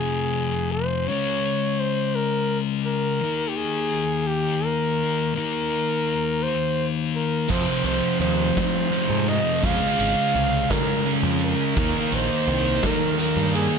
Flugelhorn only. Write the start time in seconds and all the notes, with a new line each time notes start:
Already playing: G#4
0.72 C5
1.08 C#5
1.80 C5
2.16 A#4
2.86 A#4
3.49 G4
3.56 G#4
4.27 G4
4.65 A#4
5.37 A#4
6.43 C5
7.16 A#4
7.51 C5
7.86 C5
8.21 C5
9.29 D#5
9.66 F5
10.71 A#4
11.44 A#4
12.15 C5
12.86 A#4
13.21 A#4
13.55 G#4